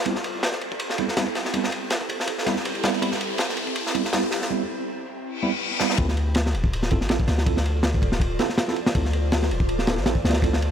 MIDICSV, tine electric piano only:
0, 0, Header, 1, 2, 480
1, 0, Start_track
1, 0, Key_signature, -1, "minor"
1, 0, Tempo, 370370
1, 78, Time_signature, 4, 2, 24, 8
1, 13883, End_track
2, 0, Start_track
2, 0, Title_t, "Tine electric piano"
2, 0, Program_c, 0, 4
2, 77, Note_on_c, 0, 55, 74
2, 77, Note_on_c, 0, 64, 82
2, 78, Note_on_c, 0, 59, 70
2, 79, Note_on_c, 0, 60, 67
2, 169, Note_off_c, 0, 55, 0
2, 170, Note_off_c, 0, 59, 0
2, 170, Note_off_c, 0, 64, 0
2, 171, Note_off_c, 0, 60, 0
2, 1277, Note_on_c, 0, 59, 71
2, 1277, Note_on_c, 0, 60, 71
2, 1277, Note_on_c, 0, 64, 89
2, 1279, Note_on_c, 0, 55, 77
2, 1370, Note_off_c, 0, 55, 0
2, 1370, Note_off_c, 0, 59, 0
2, 1370, Note_off_c, 0, 60, 0
2, 1370, Note_off_c, 0, 64, 0
2, 1518, Note_on_c, 0, 55, 83
2, 1518, Note_on_c, 0, 59, 77
2, 1518, Note_on_c, 0, 60, 77
2, 1518, Note_on_c, 0, 64, 94
2, 1610, Note_off_c, 0, 55, 0
2, 1610, Note_off_c, 0, 59, 0
2, 1610, Note_off_c, 0, 60, 0
2, 1610, Note_off_c, 0, 64, 0
2, 1994, Note_on_c, 0, 60, 72
2, 1996, Note_on_c, 0, 59, 73
2, 1996, Note_on_c, 0, 64, 88
2, 1997, Note_on_c, 0, 55, 79
2, 2141, Note_off_c, 0, 60, 0
2, 2141, Note_off_c, 0, 64, 0
2, 2142, Note_off_c, 0, 55, 0
2, 2142, Note_off_c, 0, 59, 0
2, 3195, Note_on_c, 0, 64, 102
2, 3196, Note_on_c, 0, 59, 83
2, 3196, Note_on_c, 0, 60, 86
2, 3197, Note_on_c, 0, 55, 95
2, 3289, Note_off_c, 0, 55, 0
2, 3289, Note_off_c, 0, 59, 0
2, 3289, Note_off_c, 0, 60, 0
2, 3289, Note_off_c, 0, 64, 0
2, 3676, Note_on_c, 0, 59, 80
2, 3676, Note_on_c, 0, 64, 103
2, 3678, Note_on_c, 0, 60, 83
2, 3679, Note_on_c, 0, 55, 90
2, 3891, Note_off_c, 0, 59, 0
2, 3891, Note_off_c, 0, 64, 0
2, 3892, Note_off_c, 0, 60, 0
2, 3893, Note_off_c, 0, 55, 0
2, 3917, Note_on_c, 0, 60, 69
2, 3917, Note_on_c, 0, 64, 86
2, 3918, Note_on_c, 0, 55, 77
2, 3918, Note_on_c, 0, 59, 72
2, 4010, Note_off_c, 0, 55, 0
2, 4010, Note_off_c, 0, 59, 0
2, 4010, Note_off_c, 0, 60, 0
2, 4010, Note_off_c, 0, 64, 0
2, 5117, Note_on_c, 0, 59, 73
2, 5119, Note_on_c, 0, 55, 81
2, 5119, Note_on_c, 0, 60, 74
2, 5119, Note_on_c, 0, 64, 86
2, 5210, Note_off_c, 0, 55, 0
2, 5210, Note_off_c, 0, 59, 0
2, 5210, Note_off_c, 0, 60, 0
2, 5210, Note_off_c, 0, 64, 0
2, 5357, Note_on_c, 0, 55, 85
2, 5357, Note_on_c, 0, 59, 79
2, 5358, Note_on_c, 0, 60, 77
2, 5358, Note_on_c, 0, 64, 98
2, 5450, Note_off_c, 0, 55, 0
2, 5450, Note_off_c, 0, 59, 0
2, 5450, Note_off_c, 0, 60, 0
2, 5450, Note_off_c, 0, 64, 0
2, 5838, Note_on_c, 0, 55, 78
2, 5838, Note_on_c, 0, 59, 73
2, 5838, Note_on_c, 0, 60, 72
2, 5839, Note_on_c, 0, 64, 85
2, 5982, Note_off_c, 0, 55, 0
2, 5982, Note_off_c, 0, 60, 0
2, 5983, Note_off_c, 0, 59, 0
2, 5983, Note_off_c, 0, 64, 0
2, 7034, Note_on_c, 0, 59, 88
2, 7034, Note_on_c, 0, 64, 103
2, 7035, Note_on_c, 0, 55, 98
2, 7035, Note_on_c, 0, 60, 88
2, 7128, Note_off_c, 0, 59, 0
2, 7128, Note_off_c, 0, 64, 0
2, 7129, Note_off_c, 0, 55, 0
2, 7129, Note_off_c, 0, 60, 0
2, 7520, Note_on_c, 0, 60, 85
2, 7521, Note_on_c, 0, 55, 97
2, 7521, Note_on_c, 0, 59, 85
2, 7521, Note_on_c, 0, 64, 101
2, 7733, Note_off_c, 0, 55, 0
2, 7733, Note_off_c, 0, 59, 0
2, 7733, Note_off_c, 0, 60, 0
2, 7733, Note_off_c, 0, 64, 0
2, 7759, Note_on_c, 0, 64, 70
2, 7759, Note_on_c, 0, 65, 69
2, 7759, Note_on_c, 0, 69, 84
2, 7760, Note_on_c, 0, 60, 77
2, 7850, Note_off_c, 0, 64, 0
2, 7851, Note_off_c, 0, 60, 0
2, 7851, Note_off_c, 0, 65, 0
2, 7851, Note_off_c, 0, 69, 0
2, 8959, Note_on_c, 0, 64, 75
2, 8959, Note_on_c, 0, 69, 89
2, 8960, Note_on_c, 0, 60, 82
2, 8960, Note_on_c, 0, 65, 75
2, 9051, Note_off_c, 0, 60, 0
2, 9051, Note_off_c, 0, 64, 0
2, 9051, Note_off_c, 0, 65, 0
2, 9051, Note_off_c, 0, 69, 0
2, 9199, Note_on_c, 0, 64, 77
2, 9199, Note_on_c, 0, 65, 77
2, 9200, Note_on_c, 0, 60, 85
2, 9200, Note_on_c, 0, 69, 93
2, 9291, Note_off_c, 0, 60, 0
2, 9291, Note_off_c, 0, 64, 0
2, 9291, Note_off_c, 0, 65, 0
2, 9291, Note_off_c, 0, 69, 0
2, 9678, Note_on_c, 0, 64, 72
2, 9679, Note_on_c, 0, 65, 72
2, 9679, Note_on_c, 0, 69, 86
2, 9680, Note_on_c, 0, 60, 79
2, 9823, Note_off_c, 0, 64, 0
2, 9823, Note_off_c, 0, 65, 0
2, 9823, Note_off_c, 0, 69, 0
2, 9824, Note_off_c, 0, 60, 0
2, 10881, Note_on_c, 0, 65, 88
2, 10882, Note_on_c, 0, 60, 96
2, 10882, Note_on_c, 0, 64, 89
2, 10883, Note_on_c, 0, 69, 109
2, 10972, Note_off_c, 0, 60, 0
2, 10972, Note_off_c, 0, 64, 0
2, 10972, Note_off_c, 0, 65, 0
2, 10973, Note_off_c, 0, 69, 0
2, 11254, Note_on_c, 0, 64, 74
2, 11255, Note_on_c, 0, 65, 74
2, 11256, Note_on_c, 0, 69, 91
2, 11257, Note_on_c, 0, 60, 79
2, 11376, Note_off_c, 0, 64, 0
2, 11376, Note_off_c, 0, 65, 0
2, 11377, Note_off_c, 0, 60, 0
2, 11377, Note_off_c, 0, 69, 0
2, 11603, Note_on_c, 0, 65, 73
2, 11603, Note_on_c, 0, 69, 89
2, 11604, Note_on_c, 0, 60, 79
2, 11604, Note_on_c, 0, 64, 73
2, 11693, Note_off_c, 0, 60, 0
2, 11693, Note_off_c, 0, 64, 0
2, 11693, Note_off_c, 0, 65, 0
2, 11693, Note_off_c, 0, 69, 0
2, 12803, Note_on_c, 0, 65, 74
2, 12804, Note_on_c, 0, 60, 82
2, 12804, Note_on_c, 0, 69, 89
2, 12805, Note_on_c, 0, 64, 73
2, 12893, Note_off_c, 0, 60, 0
2, 12893, Note_off_c, 0, 65, 0
2, 12893, Note_off_c, 0, 69, 0
2, 12894, Note_off_c, 0, 64, 0
2, 13041, Note_on_c, 0, 69, 94
2, 13042, Note_on_c, 0, 60, 88
2, 13043, Note_on_c, 0, 64, 80
2, 13043, Note_on_c, 0, 65, 79
2, 13132, Note_off_c, 0, 60, 0
2, 13132, Note_off_c, 0, 69, 0
2, 13133, Note_off_c, 0, 64, 0
2, 13133, Note_off_c, 0, 65, 0
2, 13521, Note_on_c, 0, 60, 78
2, 13521, Note_on_c, 0, 64, 72
2, 13521, Note_on_c, 0, 69, 90
2, 13522, Note_on_c, 0, 65, 75
2, 13664, Note_off_c, 0, 60, 0
2, 13664, Note_off_c, 0, 64, 0
2, 13664, Note_off_c, 0, 65, 0
2, 13664, Note_off_c, 0, 69, 0
2, 13883, End_track
0, 0, End_of_file